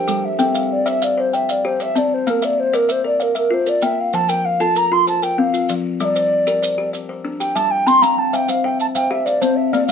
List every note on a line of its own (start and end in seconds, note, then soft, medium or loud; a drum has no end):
0.00 0.39 A#4 medium
0.00 0.39 C5 medium
0.00 0.26 G5 medium
0.08 0.39 G3 medium
0.08 0.55 A4 medium
0.08 maracas medium
0.25 0.74 E5 medium
0.39 0.70 C4 medium
0.39 0.71 A4 medium
0.39 0.86 G5 medium
0.39 maracas medium
0.55 1.01 F5 medium
0.55 maracas medium
0.72 0.90 D5 medium
0.86 1.16 C5 medium
0.86 1.17 E5 medium
0.86 1.05 E5 medium
0.86 maracas medium
1.02 1.21 D5 medium
1.02 1.48 F5 medium
1.02 maracas medium
1.17 1.49 C5 medium
1.17 1.36 C5 medium
1.33 1.52 E5 medium
1.33 1.80 G5 medium
1.33 maracas medium
1.49 1.67 D5 medium
1.49 1.96 F5 medium
1.49 maracas medium
1.65 1.96 G4 medium
1.65 1.84 C5 medium
1.80 2.27 C5 medium
1.80 1.99 E5 loud
1.80 maracas medium
1.96 2.27 C4 medium
1.96 2.15 D5 medium
1.96 2.42 A5 medium
1.96 maracas medium
2.14 2.31 C5 medium
2.27 2.58 A#3 medium
2.27 2.46 A#4 medium
2.27 2.73 F5 medium
2.27 maracas medium
2.42 2.61 D5 medium
2.42 2.88 E5 medium
2.42 maracas medium
2.60 2.77 C5 medium
2.73 3.03 A#4 medium
2.73 2.93 A#4 medium
2.73 3.05 D5 medium
2.73 maracas medium
2.89 3.05 C5 medium
2.89 3.34 E5 medium
2.89 maracas medium
3.04 3.36 A#4 medium
3.04 3.24 D5 medium
3.20 3.37 A#4 medium
3.20 3.67 F5 medium
3.20 maracas medium
3.35 3.55 A#4 medium
3.35 3.82 E5 medium
3.35 maracas medium
3.50 3.82 F4 medium
3.50 3.70 C5 medium
3.67 4.13 A#4 medium
3.67 3.85 D5 medium
3.67 maracas medium
3.82 4.13 A#3 medium
3.82 4.01 E5 loud
3.82 4.29 G5 medium
3.82 maracas medium
4.00 4.15 F5 loud
4.13 4.45 F3 medium
4.13 4.60 C5 medium
4.13 4.30 A5 loud
4.13 maracas soft
4.29 4.75 A#4 medium
4.29 4.46 G5 loud
4.29 maracas medium
4.45 4.62 F5 loud
4.60 4.90 F4 medium
4.60 4.91 A4 medium
4.60 4.79 A5 loud
4.60 maracas medium
4.76 5.21 A#4 medium
4.76 4.94 A#5 loud
4.76 maracas medium
4.92 5.23 F4 medium
4.92 5.08 C6 loud
5.07 5.54 C5 medium
5.07 5.24 A5 loud
5.07 maracas medium
5.22 5.69 A#4 medium
5.22 5.40 G5 medium
5.22 maracas medium
5.38 5.69 C4 medium
5.38 5.74 F5 loud
5.54 6.00 F4 medium
5.54 maracas medium
5.69 6.00 F3 medium
5.69 5.99 D5 medium
5.69 maracas medium
6.00 6.31 G3 medium
6.00 6.47 D5 medium
6.00 6.05 E5 loud
6.00 maracas medium
6.04 6.90 D5 loud
6.16 6.61 C5 medium
6.16 maracas medium
6.47 6.77 G4 medium
6.47 6.78 A#4 medium
6.47 maracas medium
6.62 7.08 C5 medium
6.62 maracas medium
6.78 7.09 G4 medium
6.93 7.40 D5 medium
6.93 maracas medium
7.09 7.56 C5 medium
7.25 7.56 D4 medium
7.40 7.87 G4 medium
7.40 7.57 G5 loud
7.40 maracas medium
7.55 7.87 G3 medium
7.55 8.02 E5 medium
7.55 7.72 A5 loud
7.55 maracas medium
7.71 7.88 G5 loud
7.87 8.18 C4 medium
7.87 8.33 G5 medium
7.87 8.03 C6 loud
7.87 maracas medium
8.02 8.34 C4 medium
8.02 8.47 F5 medium
8.02 8.20 A#5 loud
8.02 maracas medium
8.18 8.65 G5 medium
8.18 8.36 A5 medium
8.33 8.63 C5 medium
8.33 8.65 E5 medium
8.33 8.80 F5 medium
8.33 8.51 G5 loud
8.33 maracas medium
8.48 8.80 C5 medium
8.48 8.94 F5 medium
8.48 8.66 F5 loud
8.48 maracas medium
8.64 8.96 C5 medium
8.64 8.94 E5 medium
8.64 8.80 G5 loud
8.80 8.87 A5 loud
8.80 maracas medium
8.95 9.42 C5 medium
8.95 9.27 E5 medium
8.95 9.42 F5 medium
8.95 9.13 G5 medium
8.95 maracas medium
9.11 9.42 G4 medium
9.11 9.27 E5 medium
9.25 9.73 C5 medium
9.25 9.43 D5 medium
9.25 9.74 F5 medium
9.25 maracas medium
9.41 9.73 C4 medium
9.41 9.58 C5 medium
9.41 9.89 A5 medium
9.41 maracas medium
9.56 9.74 E5 medium
9.72 9.92 A#3 medium
9.72 9.86 D5 loud
9.72 9.92 D5 medium
9.72 9.92 F5 medium
9.72 maracas medium
9.87 9.92 A#3 medium
9.87 9.92 E5 medium
9.87 9.92 F5 medium
9.87 maracas medium